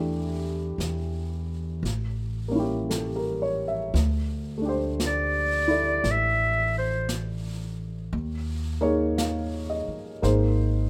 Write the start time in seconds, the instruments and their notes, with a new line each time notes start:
Already playing: upright bass E2, grand piano E3 A3 D4 G4
0.78 upright bass E2, brush sweep, snare, hi-hat pedal
1.83 upright bass A1, brush sweep, snare
2.48 grand piano A#3 C#4
2.55 grand piano E4 G4
2.89 grand piano A4, brush sweep, snare, hi-hat pedal
3.16 grand piano A#4
3.42 grand piano C#5
3.68 grand piano E5
3.94 upright bass D2, brush sweep, snare
4.58 grand piano A3 D4
4.65 grand piano G4 C5
5.00 brush sweep, snare, hi-hat pedal
5.06 clarinet D5
5.68 grand piano E4 A4 D5
6.04 upright bass A1, brush sweep, snare
6.11 clarinet E5
6.78 clarinet C5
7.09 brush sweep, snare, hi-hat pedal
8.13 upright bass D#2, brush sweep
8.81 grand piano A#3 D#4 G#4 C#5
9.18 grand piano F5, brush sweep, snare, hi-hat pedal
9.70 grand piano D#5
9.88 muted upright bass stroke
10.22 upright bass G#1, grand piano A#3 D#4 G#4 C5, brush sweep, snare